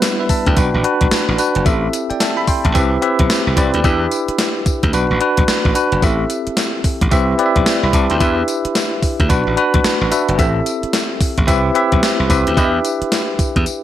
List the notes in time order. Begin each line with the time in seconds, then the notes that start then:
Already playing: G3 B3 D4 E4 B4
0.02 snare, closed hi-hat, tambourine
0.20 B4 E5
0.29 E5 A5, muted slap bass stroke, kick, open hi-hat, tambourine
0.46 D2 D5 G5, kick, closed hi-hat
0.56 B1 D4 F#4 B4, kick, closed hi-hat, tambourine
0.74 A1
0.84 D4 F#4 B4, closed hi-hat
1.01 B1, kick, closed hi-hat
1.11 muted slap bass stroke, snare, closed hi-hat, tambourine
1.28 A1
1.38 D4 F#4 B4, closed hi-hat, tambourine
1.55 F#1, closed hi-hat
1.65 A1 C4 E4 G4 A4 E5, kick, closed hi-hat, tambourine
1.93 closed hi-hat, tambourine
2.10 D5 G5, muted slap bass stroke, closed hi-hat
2.20 E5 A5, snare, closed hi-hat, tambourine
2.37 E5 B5
2.47 G5 C6, muted slap bass stroke, kick, open hi-hat, tambourine
2.64 A1 E5 A5, kick, closed hi-hat
2.74 C2 C4 E4 G4 B4 E5, kick, closed hi-hat, tambourine
3.02 C4 E4 G4 B4 E5, closed hi-hat
3.19 B1, kick, closed hi-hat
3.30 snare, closed hi-hat, tambourine
3.47 C2
3.56 C2 C4 E4 G4 B4 D5, kick, closed hi-hat, tambourine
3.74 D2, closed hi-hat
3.84 E2 D4 E4 G4 B4 E5, kick, closed hi-hat, tambourine
4.12 closed hi-hat, tambourine
4.28 muted slap bass stroke, closed hi-hat
4.39 snare, closed hi-hat, tambourine
4.66 muted slap bass stroke, kick, closed hi-hat, tambourine
4.83 D2, kick, closed hi-hat
4.93 B1 D4 F#4 B4, closed hi-hat, tambourine
5.11 A1
5.21 D4 F#4 B4, closed hi-hat
5.37 B1, kick, closed hi-hat
5.48 muted slap bass stroke, snare, closed hi-hat, tambourine
5.65 A1, kick
5.75 D4 F#4 B4, closed hi-hat, tambourine
5.92 F#1, closed hi-hat
6.02 A1 C4 E4 G4 A4 E5, kick, closed hi-hat, tambourine
6.30 closed hi-hat, tambourine
6.47 muted slap bass stroke, closed hi-hat
6.57 snare, closed hi-hat, tambourine
6.84 muted slap bass stroke, kick, open hi-hat, tambourine
7.01 A1, kick, closed hi-hat
7.11 C2 C4 E4 G4 B4 E5, kick, closed hi-hat, tambourine
7.38 C4 E4 G4 B4 D5, closed hi-hat
7.46 E5
7.56 B1, kick, closed hi-hat
7.66 D5 G5, snare, closed hi-hat, tambourine
7.83 C2 E5 B5
7.93 C2 A5 D6, kick, closed hi-hat, tambourine
8.10 D2 G5 C6, closed hi-hat
8.20 E2 D4 E4 G4 B4 E5, kick, closed hi-hat, tambourine
8.48 closed hi-hat, tambourine
8.65 muted slap bass stroke, closed hi-hat
8.75 snare, closed hi-hat, tambourine
9.03 muted slap bass stroke, kick, open hi-hat, tambourine
9.20 D2, kick, closed hi-hat
9.29 B1 D4 F#4 B4, kick, closed hi-hat, tambourine
9.47 A1
9.57 D4 F#4 B4 B5, closed hi-hat
9.74 B1, kick, closed hi-hat
9.84 F#5, muted slap bass stroke, snare, closed hi-hat, tambourine
10.01 A1
10.11 D4 F#4 B4 E5, closed hi-hat, tambourine
10.29 F#1, closed hi-hat
10.38 A1 C4 E4 G4 A4 E5, kick, closed hi-hat, tambourine
10.66 closed hi-hat, tambourine
10.83 muted slap bass stroke, closed hi-hat
10.93 snare, closed hi-hat, tambourine
11.21 muted slap bass stroke, kick, open hi-hat, tambourine
11.38 A1, kick, closed hi-hat
11.47 C2 C4 E4 G4 B4 E5, kick, closed hi-hat, tambourine
11.74 C4 E4 G4 B4 E5, closed hi-hat
11.92 B1, kick, closed hi-hat
12.03 snare, closed hi-hat, tambourine
12.20 C2
12.29 C2 C4 E4 G4 B4 E5, kick, closed hi-hat, tambourine
12.47 D2, closed hi-hat
12.57 E2 D4 E4 G4 B4 D#5, kick, closed hi-hat, tambourine
12.65 E5
12.85 closed hi-hat, tambourine
13.02 muted slap bass stroke, closed hi-hat
13.12 snare, closed hi-hat, tambourine
13.39 muted slap bass stroke, kick, closed hi-hat, tambourine
13.56 E2, kick, closed hi-hat
13.66 closed hi-hat, tambourine